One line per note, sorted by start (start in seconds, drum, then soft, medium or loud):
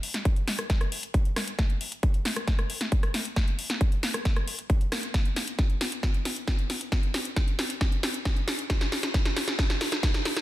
0.03 open hi-hat loud
0.14 snare soft
0.14 closed hi-hat medium
0.25 kick loud
0.25 closed hi-hat medium
0.36 closed hi-hat soft
0.48 snare medium
0.48 open hi-hat loud
0.59 cross-stick medium
0.59 closed hi-hat medium
0.70 kick loud
0.70 snare medium
0.70 closed hi-hat soft
0.81 cross-stick medium
0.81 closed hi-hat soft
0.92 open hi-hat loud
1.03 closed hi-hat soft
1.14 kick loud
1.14 closed hi-hat medium
1.25 closed hi-hat soft
1.36 cross-stick medium
1.36 snare medium
1.36 open hi-hat loud
1.48 closed hi-hat soft
1.59 kick loud
1.59 snare medium
1.59 closed hi-hat medium
1.70 closed hi-hat soft
1.81 open hi-hat loud
1.92 closed hi-hat medium
2.03 kick loud
2.03 closed hi-hat medium
2.14 closed hi-hat soft
2.25 snare medium
2.25 open hi-hat loud
2.36 cross-stick medium
2.36 closed hi-hat medium
2.48 kick loud
2.48 snare medium
2.48 closed hi-hat soft
2.59 cross-stick medium
2.59 closed hi-hat soft
2.70 open hi-hat loud
2.81 snare medium
2.81 closed hi-hat soft
2.92 kick loud
2.92 closed hi-hat soft
3.03 cross-stick medium
3.03 closed hi-hat soft
3.14 snare medium
3.14 open hi-hat loud
3.25 closed hi-hat soft
3.36 kick loud
3.36 snare medium
3.36 closed hi-hat soft
3.48 closed hi-hat soft
3.59 open hi-hat loud
3.70 snare medium
3.70 closed hi-hat soft
3.81 kick loud
3.81 closed hi-hat soft
3.92 closed hi-hat soft
4.03 snare medium
4.03 open hi-hat loud
4.14 cross-stick medium
4.14 closed hi-hat soft
4.25 kick loud
4.25 snare medium
4.25 closed hi-hat soft
4.36 cross-stick medium
4.36 closed hi-hat soft
4.48 open hi-hat loud
4.59 closed hi-hat soft
4.70 kick loud
4.70 closed hi-hat soft
4.81 closed hi-hat soft
4.92 cross-stick medium
4.92 snare medium
4.92 open hi-hat loud
5.03 closed hi-hat medium
5.14 kick loud
5.14 snare medium
5.14 closed hi-hat medium
5.25 closed hi-hat soft
5.36 snare medium
5.36 open hi-hat loud
5.48 closed hi-hat soft
5.59 kick loud
5.59 snare medium
5.59 closed hi-hat soft
5.70 closed hi-hat soft
5.81 snare medium
5.81 open hi-hat loud
5.92 closed hi-hat medium
6.03 kick loud
6.03 snare medium
6.03 closed hi-hat soft
6.14 closed hi-hat soft
6.25 snare medium
6.25 open hi-hat loud
6.36 closed hi-hat soft
6.48 kick loud
6.48 snare medium
6.48 closed hi-hat medium
6.59 closed hi-hat soft
6.70 snare medium
6.70 open hi-hat loud
6.81 closed hi-hat medium
6.92 kick loud
6.92 snare medium
6.92 closed hi-hat soft
7.03 closed hi-hat soft
7.14 snare medium
7.14 open hi-hat medium
7.25 closed hi-hat medium
7.36 kick loud
7.36 snare medium
7.36 closed hi-hat medium
7.48 closed hi-hat soft
7.59 snare medium
7.59 open hi-hat medium
7.70 closed hi-hat medium
7.81 kick loud
7.81 snare medium
7.81 closed hi-hat medium
7.92 closed hi-hat soft
8.03 snare medium
8.03 open hi-hat loud
8.14 closed hi-hat medium
8.25 kick loud
8.25 snare medium
8.25 closed hi-hat medium
8.37 closed hi-hat soft
8.48 snare medium
8.48 open hi-hat loud
8.59 closed hi-hat soft
8.70 kick loud
8.70 snare medium
8.70 closed hi-hat medium
8.81 snare medium
8.81 closed hi-hat soft
8.92 snare medium
8.92 open hi-hat medium
9.03 snare medium
9.03 closed hi-hat medium
9.14 kick loud
9.14 snare loud
9.14 closed hi-hat medium
9.25 snare medium
9.25 closed hi-hat soft
9.37 snare medium
9.37 open hi-hat loud
9.48 snare medium
9.48 closed hi-hat medium
9.59 kick loud
9.59 snare medium
9.59 closed hi-hat medium
9.70 snare medium
9.70 closed hi-hat soft
9.81 snare loud
9.81 open hi-hat loud
9.92 snare medium
9.92 closed hi-hat medium
10.03 kick loud
10.03 snare loud
10.03 closed hi-hat medium
10.14 snare medium
10.14 closed hi-hat soft
10.25 snare medium
10.25 open hi-hat medium
10.37 snare medium
10.37 closed hi-hat medium